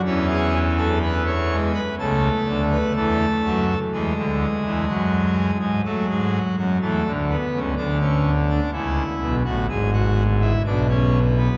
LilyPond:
<<
  \new Staff \with { instrumentName = "Pipe organ" } { \time 4/4 \key e \dorian \tempo 4 = 62 << { e'16 gis'8 a'16 b'16 cis''8 b'16 a'8. b'16 a'4 | r1 | r1 | } \\ { cis'4 b8 gis8 a2 | gis2 fis4 a8 b8 | d'16 cis'8 d'16 e'8. fis'16 gis'16 fis'8 e'16 d'16 cis'8 b16 | } >> }
  \new Staff \with { instrumentName = "Pipe organ" } { \clef bass \time 4/4 \key e \dorian <e, e>2 <cis, cis>8 <d, d>8 <e, e>8 <fis, fis>8 | <e, e>16 <d, d>8 <e, e>16 <fis, fis>8. <gis, gis>16 a16 <gis, gis>8 <fis, fis>16 <e, e>16 <d, d>8 <cis, cis>16 | <d, d>4 <cis, cis>8 <b,, b,>16 <a,, a,>16 <gis,, gis,>4 <b,, b,>4 | }
>>